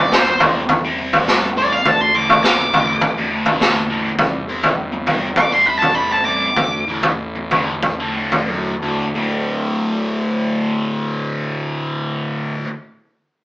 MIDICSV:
0, 0, Header, 1, 6, 480
1, 0, Start_track
1, 0, Tempo, 583090
1, 1523, Time_signature, 4, 2, 24, 8
1, 3925, Tempo, 604230
1, 5845, Tempo, 655738
1, 7285, Tempo, 688073
1, 10278, End_track
2, 0, Start_track
2, 0, Title_t, "Lead electric guitar"
2, 0, Program_c, 0, 29
2, 0, Note_on_c, 0, 74, 85
2, 94, Note_off_c, 0, 74, 0
2, 125, Note_on_c, 0, 72, 92
2, 338, Note_off_c, 0, 72, 0
2, 1299, Note_on_c, 0, 74, 102
2, 1419, Note_off_c, 0, 74, 0
2, 1419, Note_on_c, 0, 77, 80
2, 1528, Note_off_c, 0, 77, 0
2, 1548, Note_on_c, 0, 81, 89
2, 1652, Note_off_c, 0, 81, 0
2, 1654, Note_on_c, 0, 84, 80
2, 1765, Note_off_c, 0, 84, 0
2, 1777, Note_on_c, 0, 86, 82
2, 1992, Note_off_c, 0, 86, 0
2, 2002, Note_on_c, 0, 86, 116
2, 3409, Note_off_c, 0, 86, 0
2, 4410, Note_on_c, 0, 86, 93
2, 4516, Note_off_c, 0, 86, 0
2, 4534, Note_on_c, 0, 84, 83
2, 4638, Note_off_c, 0, 84, 0
2, 4643, Note_on_c, 0, 83, 77
2, 4731, Note_off_c, 0, 83, 0
2, 4734, Note_on_c, 0, 81, 78
2, 4861, Note_off_c, 0, 81, 0
2, 4861, Note_on_c, 0, 83, 77
2, 4981, Note_off_c, 0, 83, 0
2, 5002, Note_on_c, 0, 81, 82
2, 5100, Note_off_c, 0, 81, 0
2, 5103, Note_on_c, 0, 86, 99
2, 6517, Note_off_c, 0, 86, 0
2, 10278, End_track
3, 0, Start_track
3, 0, Title_t, "Distorted electric guitar"
3, 0, Program_c, 1, 30
3, 335, Note_on_c, 1, 48, 81
3, 341, Note_on_c, 1, 55, 83
3, 346, Note_on_c, 1, 60, 82
3, 486, Note_off_c, 1, 48, 0
3, 488, Note_off_c, 1, 55, 0
3, 491, Note_off_c, 1, 60, 0
3, 694, Note_on_c, 1, 60, 78
3, 698, Note_on_c, 1, 55, 74
3, 702, Note_on_c, 1, 48, 63
3, 802, Note_off_c, 1, 48, 0
3, 809, Note_off_c, 1, 60, 0
3, 811, Note_off_c, 1, 55, 0
3, 812, Note_on_c, 1, 48, 67
3, 819, Note_on_c, 1, 55, 69
3, 828, Note_on_c, 1, 60, 82
3, 924, Note_off_c, 1, 60, 0
3, 928, Note_off_c, 1, 48, 0
3, 932, Note_off_c, 1, 55, 0
3, 934, Note_on_c, 1, 60, 93
3, 942, Note_on_c, 1, 55, 82
3, 943, Note_on_c, 1, 48, 75
3, 1035, Note_off_c, 1, 48, 0
3, 1038, Note_off_c, 1, 55, 0
3, 1041, Note_off_c, 1, 60, 0
3, 1045, Note_on_c, 1, 48, 65
3, 1047, Note_on_c, 1, 55, 64
3, 1050, Note_on_c, 1, 60, 70
3, 1200, Note_off_c, 1, 48, 0
3, 1201, Note_off_c, 1, 55, 0
3, 1203, Note_off_c, 1, 60, 0
3, 1290, Note_on_c, 1, 48, 75
3, 1296, Note_on_c, 1, 55, 86
3, 1298, Note_on_c, 1, 60, 81
3, 1443, Note_off_c, 1, 48, 0
3, 1446, Note_off_c, 1, 55, 0
3, 1446, Note_off_c, 1, 60, 0
3, 1761, Note_on_c, 1, 38, 82
3, 1765, Note_on_c, 1, 45, 74
3, 1771, Note_on_c, 1, 50, 78
3, 1918, Note_off_c, 1, 38, 0
3, 1920, Note_off_c, 1, 45, 0
3, 1923, Note_off_c, 1, 50, 0
3, 2249, Note_on_c, 1, 38, 72
3, 2259, Note_on_c, 1, 45, 74
3, 2266, Note_on_c, 1, 50, 84
3, 2402, Note_off_c, 1, 38, 0
3, 2407, Note_off_c, 1, 45, 0
3, 2410, Note_off_c, 1, 50, 0
3, 2613, Note_on_c, 1, 50, 85
3, 2620, Note_on_c, 1, 45, 68
3, 2623, Note_on_c, 1, 38, 58
3, 2722, Note_off_c, 1, 38, 0
3, 2728, Note_off_c, 1, 50, 0
3, 2731, Note_off_c, 1, 45, 0
3, 2732, Note_on_c, 1, 38, 67
3, 2740, Note_on_c, 1, 45, 66
3, 2745, Note_on_c, 1, 50, 70
3, 2842, Note_off_c, 1, 50, 0
3, 2847, Note_off_c, 1, 38, 0
3, 2851, Note_off_c, 1, 45, 0
3, 2851, Note_on_c, 1, 50, 93
3, 2860, Note_on_c, 1, 45, 89
3, 2861, Note_on_c, 1, 38, 80
3, 2960, Note_off_c, 1, 38, 0
3, 2964, Note_off_c, 1, 45, 0
3, 2967, Note_off_c, 1, 50, 0
3, 2970, Note_on_c, 1, 38, 70
3, 2974, Note_on_c, 1, 45, 77
3, 2981, Note_on_c, 1, 50, 74
3, 3122, Note_off_c, 1, 38, 0
3, 3124, Note_off_c, 1, 45, 0
3, 3128, Note_off_c, 1, 50, 0
3, 3205, Note_on_c, 1, 38, 72
3, 3212, Note_on_c, 1, 45, 76
3, 3217, Note_on_c, 1, 50, 77
3, 3360, Note_off_c, 1, 38, 0
3, 3364, Note_off_c, 1, 45, 0
3, 3366, Note_off_c, 1, 50, 0
3, 3692, Note_on_c, 1, 48, 74
3, 3696, Note_on_c, 1, 55, 84
3, 3699, Note_on_c, 1, 60, 87
3, 3844, Note_off_c, 1, 48, 0
3, 3846, Note_off_c, 1, 55, 0
3, 3847, Note_off_c, 1, 60, 0
3, 4164, Note_on_c, 1, 48, 75
3, 4168, Note_on_c, 1, 55, 70
3, 4171, Note_on_c, 1, 60, 76
3, 4313, Note_off_c, 1, 48, 0
3, 4315, Note_off_c, 1, 55, 0
3, 4317, Note_off_c, 1, 60, 0
3, 4508, Note_on_c, 1, 60, 71
3, 4517, Note_on_c, 1, 55, 68
3, 4524, Note_on_c, 1, 48, 62
3, 4626, Note_off_c, 1, 48, 0
3, 4628, Note_off_c, 1, 60, 0
3, 4630, Note_off_c, 1, 55, 0
3, 4636, Note_on_c, 1, 48, 67
3, 4640, Note_on_c, 1, 55, 75
3, 4644, Note_on_c, 1, 60, 76
3, 4736, Note_off_c, 1, 60, 0
3, 4742, Note_off_c, 1, 55, 0
3, 4744, Note_off_c, 1, 48, 0
3, 4746, Note_on_c, 1, 60, 90
3, 4751, Note_on_c, 1, 55, 82
3, 4754, Note_on_c, 1, 48, 77
3, 4856, Note_off_c, 1, 48, 0
3, 4860, Note_off_c, 1, 55, 0
3, 4866, Note_off_c, 1, 60, 0
3, 4866, Note_on_c, 1, 48, 72
3, 4870, Note_on_c, 1, 55, 65
3, 4876, Note_on_c, 1, 60, 74
3, 5023, Note_off_c, 1, 48, 0
3, 5025, Note_off_c, 1, 55, 0
3, 5028, Note_off_c, 1, 60, 0
3, 5107, Note_on_c, 1, 48, 71
3, 5114, Note_on_c, 1, 55, 80
3, 5116, Note_on_c, 1, 60, 78
3, 5265, Note_off_c, 1, 48, 0
3, 5268, Note_off_c, 1, 55, 0
3, 5269, Note_off_c, 1, 60, 0
3, 5602, Note_on_c, 1, 38, 79
3, 5610, Note_on_c, 1, 45, 88
3, 5612, Note_on_c, 1, 50, 81
3, 5760, Note_off_c, 1, 38, 0
3, 5764, Note_off_c, 1, 45, 0
3, 5765, Note_off_c, 1, 50, 0
3, 6077, Note_on_c, 1, 38, 71
3, 6083, Note_on_c, 1, 45, 79
3, 6084, Note_on_c, 1, 50, 76
3, 6229, Note_off_c, 1, 38, 0
3, 6231, Note_off_c, 1, 45, 0
3, 6232, Note_off_c, 1, 50, 0
3, 6434, Note_on_c, 1, 50, 66
3, 6440, Note_on_c, 1, 38, 62
3, 6440, Note_on_c, 1, 45, 68
3, 6551, Note_off_c, 1, 50, 0
3, 6554, Note_off_c, 1, 38, 0
3, 6554, Note_off_c, 1, 45, 0
3, 6563, Note_on_c, 1, 38, 60
3, 6570, Note_on_c, 1, 50, 64
3, 6571, Note_on_c, 1, 45, 67
3, 6670, Note_off_c, 1, 50, 0
3, 6673, Note_off_c, 1, 45, 0
3, 6676, Note_off_c, 1, 38, 0
3, 6678, Note_on_c, 1, 50, 92
3, 6682, Note_on_c, 1, 45, 81
3, 6692, Note_on_c, 1, 38, 64
3, 6795, Note_off_c, 1, 38, 0
3, 6795, Note_off_c, 1, 50, 0
3, 6797, Note_off_c, 1, 45, 0
3, 6804, Note_on_c, 1, 38, 60
3, 6806, Note_on_c, 1, 45, 62
3, 6813, Note_on_c, 1, 50, 69
3, 6956, Note_off_c, 1, 38, 0
3, 6957, Note_off_c, 1, 45, 0
3, 6960, Note_off_c, 1, 50, 0
3, 7039, Note_on_c, 1, 38, 67
3, 7044, Note_on_c, 1, 45, 70
3, 7044, Note_on_c, 1, 50, 76
3, 7199, Note_off_c, 1, 38, 0
3, 7201, Note_off_c, 1, 45, 0
3, 7201, Note_off_c, 1, 50, 0
3, 7276, Note_on_c, 1, 38, 77
3, 7295, Note_on_c, 1, 45, 86
3, 7303, Note_on_c, 1, 50, 83
3, 9718, Note_off_c, 1, 38, 0
3, 9736, Note_off_c, 1, 45, 0
3, 9745, Note_off_c, 1, 50, 0
3, 10278, End_track
4, 0, Start_track
4, 0, Title_t, "Fingered electric bass"
4, 0, Program_c, 2, 33
4, 0, Note_on_c, 2, 31, 80
4, 652, Note_off_c, 2, 31, 0
4, 1039, Note_on_c, 2, 33, 82
4, 1444, Note_off_c, 2, 33, 0
4, 1526, Note_on_c, 2, 38, 86
4, 1727, Note_off_c, 2, 38, 0
4, 1769, Note_on_c, 2, 33, 83
4, 2574, Note_off_c, 2, 33, 0
4, 2974, Note_on_c, 2, 33, 81
4, 3373, Note_off_c, 2, 33, 0
4, 3446, Note_on_c, 2, 36, 93
4, 3647, Note_off_c, 2, 36, 0
4, 3684, Note_on_c, 2, 31, 77
4, 4481, Note_off_c, 2, 31, 0
4, 4867, Note_on_c, 2, 33, 75
4, 5274, Note_off_c, 2, 33, 0
4, 5350, Note_on_c, 2, 38, 91
4, 5557, Note_off_c, 2, 38, 0
4, 5591, Note_on_c, 2, 33, 81
4, 6398, Note_off_c, 2, 33, 0
4, 6791, Note_on_c, 2, 42, 76
4, 7012, Note_off_c, 2, 42, 0
4, 7030, Note_on_c, 2, 38, 74
4, 7257, Note_off_c, 2, 38, 0
4, 7287, Note_on_c, 2, 26, 79
4, 9648, Note_off_c, 2, 26, 0
4, 10278, End_track
5, 0, Start_track
5, 0, Title_t, "Muted distorted electric guitar strokes"
5, 230, Note_on_c, 9, 29, 45
5, 312, Note_off_c, 9, 29, 0
5, 2129, Note_on_c, 9, 29, 48
5, 2211, Note_off_c, 9, 29, 0
5, 4044, Note_on_c, 9, 29, 49
5, 4124, Note_off_c, 9, 29, 0
5, 5964, Note_on_c, 9, 29, 46
5, 6037, Note_off_c, 9, 29, 0
5, 10278, End_track
6, 0, Start_track
6, 0, Title_t, "Drums"
6, 98, Note_on_c, 9, 38, 72
6, 181, Note_off_c, 9, 38, 0
6, 330, Note_on_c, 9, 43, 79
6, 412, Note_off_c, 9, 43, 0
6, 567, Note_on_c, 9, 43, 81
6, 568, Note_on_c, 9, 36, 94
6, 650, Note_off_c, 9, 36, 0
6, 650, Note_off_c, 9, 43, 0
6, 930, Note_on_c, 9, 43, 80
6, 1012, Note_off_c, 9, 43, 0
6, 1052, Note_on_c, 9, 38, 68
6, 1134, Note_off_c, 9, 38, 0
6, 1528, Note_on_c, 9, 36, 89
6, 1528, Note_on_c, 9, 43, 74
6, 1610, Note_off_c, 9, 36, 0
6, 1610, Note_off_c, 9, 43, 0
6, 1889, Note_on_c, 9, 43, 76
6, 1971, Note_off_c, 9, 43, 0
6, 2007, Note_on_c, 9, 38, 72
6, 2089, Note_off_c, 9, 38, 0
6, 2251, Note_on_c, 9, 43, 78
6, 2333, Note_off_c, 9, 43, 0
6, 2479, Note_on_c, 9, 43, 77
6, 2485, Note_on_c, 9, 36, 93
6, 2561, Note_off_c, 9, 43, 0
6, 2567, Note_off_c, 9, 36, 0
6, 2845, Note_on_c, 9, 43, 80
6, 2928, Note_off_c, 9, 43, 0
6, 2970, Note_on_c, 9, 38, 69
6, 3053, Note_off_c, 9, 38, 0
6, 3445, Note_on_c, 9, 43, 73
6, 3446, Note_on_c, 9, 36, 99
6, 3528, Note_off_c, 9, 43, 0
6, 3529, Note_off_c, 9, 36, 0
6, 3814, Note_on_c, 9, 43, 69
6, 3896, Note_off_c, 9, 43, 0
6, 4163, Note_on_c, 9, 43, 76
6, 4242, Note_off_c, 9, 43, 0
6, 4396, Note_on_c, 9, 36, 103
6, 4403, Note_on_c, 9, 43, 82
6, 4476, Note_off_c, 9, 36, 0
6, 4482, Note_off_c, 9, 43, 0
6, 4761, Note_on_c, 9, 43, 78
6, 4840, Note_off_c, 9, 43, 0
6, 5353, Note_on_c, 9, 36, 97
6, 5358, Note_on_c, 9, 43, 67
6, 5432, Note_off_c, 9, 36, 0
6, 5437, Note_off_c, 9, 43, 0
6, 5722, Note_on_c, 9, 43, 83
6, 5801, Note_off_c, 9, 43, 0
6, 6083, Note_on_c, 9, 43, 81
6, 6156, Note_off_c, 9, 43, 0
6, 6314, Note_on_c, 9, 36, 98
6, 6316, Note_on_c, 9, 43, 81
6, 6387, Note_off_c, 9, 36, 0
6, 6389, Note_off_c, 9, 43, 0
6, 6674, Note_on_c, 9, 43, 81
6, 6747, Note_off_c, 9, 43, 0
6, 10278, End_track
0, 0, End_of_file